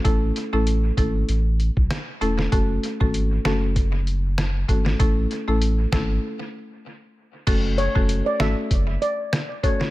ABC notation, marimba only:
X:1
M:4/4
L:1/16
Q:"Swing 16ths" 1/4=97
K:F#m
V:1 name="Marimba"
[A,CEA]3 [A,CEA] z2 [A,CEA] z6 z [A,CEA] z | [A,CFA]3 [A,CFA] z2 [A,CFA] z6 z [A,CFA] z | [A,CEA]3 [A,CEA] z2 [A,CEA] z8 z | [A,CFA]3 [A,CFA] z2 [A,CFA] z6 z [A,CFA] z |]